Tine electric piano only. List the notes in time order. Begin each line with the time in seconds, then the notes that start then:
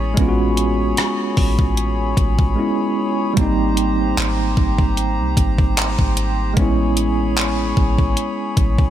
Already playing: G#3 B3 C#4 E4
0.14 G#3 B3
0.19 C#4 F4
0.29 F#4
2.56 G#3 B3 C#4 E4
3.34 G3 A#3
3.39 C4 D#4
6.54 G#3 B3
6.59 C#4 E4